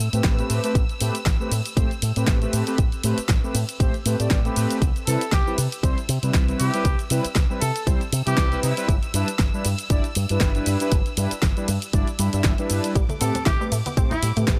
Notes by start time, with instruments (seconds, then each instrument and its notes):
Already playing: string section E6
0.00 shaker
0.13 fingered electric bass A2, analog polysynth A3 C4 G4 B4, closed hi-hat, shaker
0.24 fingered electric bass A1, kick, snare, closed hi-hat, shaker
0.39 analog polysynth A3 C4 G4 B4, closed hi-hat, shaker
0.50 fingered electric bass A2, open hi-hat, ride, shaker
0.64 analog polysynth A3 C4 G4 B4, closed hi-hat, shaker
0.75 fingered electric bass A1, kick, closed hi-hat, shaker
0.89 closed hi-hat, shaker
1.00 fingered electric bass A2, analog polysynth A3 C4 G4 B4, open hi-hat, ride, shaker
1.15 closed hi-hat, shaker
1.26 fingered electric bass A1, kick, snare, closed hi-hat, shaker
1.40 analog polysynth A3 C4 G4 B4, shaker
1.51 fingered electric bass A2, open hi-hat, ride, shaker
1.66 closed hi-hat, shaker
1.77 fingered electric bass A1, analog polysynth A3 C4 G4 C5, kick, closed hi-hat, shaker
1.91 closed hi-hat, shaker
2.02 fingered electric bass A2, open hi-hat, ride, shaker
2.16 fingered electric bass A2, analog polysynth A3 C4 G4 B4, closed hi-hat, shaker
2.27 fingered electric bass A1, kick, snare, closed hi-hat, shaker
2.42 analog polysynth A3 C4 G4 B4, closed hi-hat, shaker
2.53 fingered electric bass A2, open hi-hat, ride, shaker
2.67 analog polysynth A3 C4 G4 B4, closed hi-hat, shaker
2.78 fingered electric bass A1, kick, closed hi-hat, shaker
2.92 closed hi-hat, shaker
3.04 fingered electric bass A2, analog polysynth A3 C4 G4 B4, open hi-hat, ride, shaker
3.18 muted fingered electric bass stroke, closed hi-hat, shaker
3.29 fingered electric bass A1, kick, snare, closed hi-hat, shaker
3.44 analog polysynth A3 C4 G4 B4, shaker
3.55 fingered electric bass A2, open hi-hat, ride, shaker
3.69 closed hi-hat, shaker
3.80 fingered electric bass A1, analog polysynth A3 C4 G4 C5, kick, closed hi-hat, shaker
3.94 closed hi-hat, shaker
4.05 fingered electric bass A2, analog polysynth A3 C4 G4 B4, open hi-hat, ride, shaker
4.19 fingered electric bass A2, analog polysynth A3 C4 G4 D5, closed hi-hat, shaker
4.31 fingered electric bass A1, kick, snare, closed hi-hat, shaker
4.45 analog polysynth A3 C4 G4 B4, closed hi-hat, shaker
4.56 fingered electric bass A2, open hi-hat, ride, shaker
4.70 closed hi-hat, shaker
4.82 fingered electric bass C2, string section E6, kick, closed hi-hat, shaker
4.96 closed hi-hat, shaker
5.07 fingered electric bass C3, analog polysynth G3 C4 E4 B4, trumpet section A4, open hi-hat, ride, shaker
5.21 closed hi-hat, shaker
5.32 fingered electric bass C2, trumpet section G4, kick, snare, closed hi-hat, shaker
5.46 analog polysynth G3 C4 E4 B4, shaker
5.58 fingered electric bass C3, open hi-hat, ride, shaker
5.72 closed hi-hat, shaker
5.83 fingered electric bass C2, analog polysynth G3 C4 E4 C5, kick, closed hi-hat, shaker
5.98 closed hi-hat, shaker
6.09 fingered electric bass C3, open hi-hat, ride, shaker
6.23 fingered electric bass C3, analog polysynth G3 C4 E4 B4, closed hi-hat, shaker
6.34 fingered electric bass C2, kick, snare, closed hi-hat, shaker
6.48 analog polysynth G3 C4 E4 B4, closed hi-hat, shaker
6.60 fingered electric bass C3, trumpet section G4, open hi-hat, ride, shaker
6.74 analog polysynth G3 C4 E4 B4, closed hi-hat, shaker
6.85 fingered electric bass C2, kick, closed hi-hat, shaker
6.99 closed hi-hat, shaker
7.10 fingered electric bass C3, analog polysynth G3 C4 E4 B4, open hi-hat, ride, shaker
7.25 muted fingered electric bass stroke, closed hi-hat, shaker
7.35 fingered electric bass C2, kick, snare, closed hi-hat, shaker
7.50 analog polysynth G3 C4 E4 B4, shaker
7.61 fingered electric bass C3, trumpet section A4, open hi-hat, ride, shaker
7.76 closed hi-hat, shaker
7.86 fingered electric bass C2, analog polysynth G3 C4 E4 C5, kick, closed hi-hat, shaker
8.01 closed hi-hat, shaker
8.12 fingered electric bass C3, open hi-hat, ride, shaker
8.26 fingered electric bass C3, analog polysynth G3 C4 E4 B4, trumpet section G4, closed hi-hat, shaker
8.37 fingered electric bass C2, kick, snare, closed hi-hat, shaker
8.52 analog polysynth G3 C4 E4 B4, closed hi-hat, shaker
8.63 fingered electric bass C3, trumpet section E4, open hi-hat, ride, shaker
8.77 analog polysynth G3 C4 E4 B4, closed hi-hat, shaker
8.89 fingered electric bass G1, kick, closed hi-hat, shaker
9.03 closed hi-hat, shaker
9.14 fingered electric bass G2, analog polysynth G3 D4 E4 B4, open hi-hat, ride, shaker
9.28 closed hi-hat, shaker
9.39 fingered electric bass G1, kick, snare, closed hi-hat, shaker
9.54 analog polysynth G3 D4 E4 B4, shaker
9.65 fingered electric bass G2, open hi-hat, ride, shaker
9.79 closed hi-hat, shaker
9.90 fingered electric bass G1, analog polysynth G3 D4 E4 D5, kick, closed hi-hat, shaker
10.04 closed hi-hat, shaker
10.15 fingered electric bass G2, open hi-hat, ride, shaker
10.29 fingered electric bass G2, analog polysynth G3 D4 E4 B4, closed hi-hat, shaker
10.41 fingered electric bass G1, kick, snare, closed hi-hat, shaker
10.55 analog polysynth G3 D4 E4 B4, closed hi-hat, shaker
10.66 fingered electric bass G2, open hi-hat, ride, shaker
10.80 analog polysynth G3 D4 E4 B4, closed hi-hat, shaker
10.92 fingered electric bass G1, kick, closed hi-hat, shaker
11.06 closed hi-hat, shaker
11.17 fingered electric bass G2, analog polysynth G3 D4 E4 B4, open hi-hat, ride, shaker
11.31 muted fingered electric bass stroke, closed hi-hat, shaker
11.42 fingered electric bass G1, kick, snare, closed hi-hat, shaker
11.57 analog polysynth G3 D4 E4 B4, closed hi-hat, shaker
11.68 fingered electric bass G2, open hi-hat, ride, shaker
11.82 closed hi-hat, shaker
11.93 fingered electric bass G1, analog polysynth G3 D4 E4 D5, kick, closed hi-hat, shaker
12.07 closed hi-hat, shaker
12.19 fingered electric bass G2, analog polysynth G3 D4 E4 B4, open hi-hat, ride, shaker
12.33 fingered electric bass G2, analog polysynth G3 D4 E4 E5, closed hi-hat, shaker
12.44 fingered electric bass G1, kick, snare, closed hi-hat, shaker
12.58 analog polysynth G3 D4 E4 B4, closed hi-hat, shaker
12.70 fingered electric bass G2, open hi-hat, ride, shaker
12.84 closed hi-hat, shaker
12.95 fingered electric bass A1, synth arpeggio sound G3, string section D6, kick, closed hi-hat, maracas, shaker
13.09 synth arpeggio sound A3, closed hi-hat, high conga, shaker
13.21 fingered electric bass A2, analog polysynth A3 C4 G4 B4, synth arpeggio sound B3, trumpet section A4, open hi-hat, ride, maracas, shaker
13.35 synth arpeggio sound C4, closed hi-hat, low conga, maracas, shaker
13.46 fingered electric bass A1, synth arpeggio sound E4, trumpet section G4, kick, snare, closed hi-hat, high conga, maracas, shaker
13.60 synth arpeggio sound G3, analog polysynth A3 C4 G4 B4, shaker
13.72 fingered electric bass A2, synth arpeggio sound A3, open hi-hat, ride, maracas, shaker
13.86 synth arpeggio sound B3, closed hi-hat, high conga, maracas, shaker
13.97 fingered electric bass A1, analog polysynth A3 C4 G4 C5, synth arpeggio sound C4, kick, closed hi-hat, maracas, shaker
14.11 trumpet section E4, synth arpeggio sound E4, closed hi-hat, low conga, shaker
14.22 fingered electric bass A2, synth arpeggio sound G3, open hi-hat, ride, muted conga, maracas, shaker
14.36 fingered electric bass A2, analog polysynth A3 C4 G4 B4, synth arpeggio sound A3, closed hi-hat, high conga, maracas, shaker
14.48 fingered electric bass A1, synth arpeggio sound B3, kick, snare, closed hi-hat, shaker, maracas